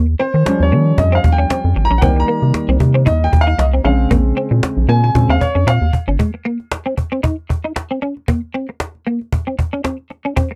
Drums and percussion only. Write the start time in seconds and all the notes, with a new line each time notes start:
0.20 cajon slap
0.34 cajon slap
0.46 cajon slap
0.87 cajon slap
0.98 cajon bass
1.24 cajon bass
1.50 cajon slap
1.91 cajon slap
2.02 cajon bass
2.28 cajon slap
2.43 cajon slap
2.54 cajon slap
2.80 cajon bass
2.96 cajon slap
3.07 cajon bass
3.33 cajon bass
3.59 cajon slap
4.00 cajon slap
4.11 cajon bass
4.37 cajon slap
4.51 cajon slap
4.63 cajon slap
5.04 cajon slap
5.15 cajon bass
5.41 cajon bass
5.56 cajon slap
5.68 cajon slap
5.93 cajon bass
6.20 cajon bass
6.45 cajon slap
6.60 cajon slap
6.72 cajon slap
6.98 cajon bass
7.12 cajon slap
7.24 cajon bass
7.39 cajon slap
7.50 cajon bass
7.65 cajon slap
7.76 cajon slap
8.02 cajon slap
8.17 cajon slap
8.28 cajon bass
8.54 cajon slap
8.69 cajon slap
8.80 cajon slap
8.95 cajon slap
9.06 cajon slap
9.21 cajon slap
9.32 cajon bass
9.59 cajon bass
9.73 cajon slap
9.85 cajon slap
9.99 cajon slap
10.10 cajon slap
10.25 cajon slap
10.37 cajon bass